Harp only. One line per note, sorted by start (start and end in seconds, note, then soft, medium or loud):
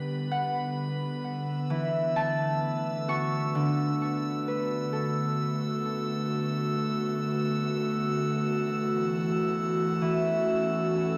0.31 2.35 F#5 medium
1.70 3.60 E3 medium
2.16 3.61 A5 medium
3.08 5.52 F#4 medium
3.08 6.36 C#6 medium
3.55 7.45 D3 medium
4.48 6.53 B4 soft
4.93 8.21 A4 soft
10.02 11.18 E3 medium